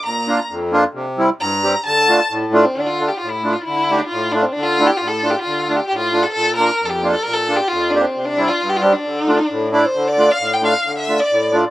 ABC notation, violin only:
X:1
M:2/4
L:1/16
Q:1/4=133
K:Dm
V:1 name="Violin"
b4 z4 | z4 b4 | a4 z2 D C | D F2 G F E2 F |
E3 D F2 D C | D F2 G F A2 G | F3 G G F2 A | A2 B2- B/2 A/2 G2 A |
B A2 G F2 D C- | C D2 F2 G/2 F/2 G D- | D6 d c- | c d2 f2 g f2- |
f e2 d3 z2 |]